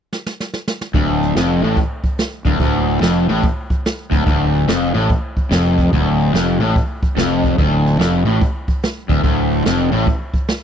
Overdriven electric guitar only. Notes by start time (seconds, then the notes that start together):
0.95 D2
1.37 F2
1.63 A2
2.46 D2
2.60 D2
3.01 F2
3.29 A2
4.11 D2
4.26 D2
4.68 F2
4.94 A2
5.51 F2
5.93 D2
6.34 F2
6.60 A2
7.17 F2
7.58 D2
7.99 F2
8.25 A2
9.09 D2
9.23 D2
9.65 F2
9.92 A2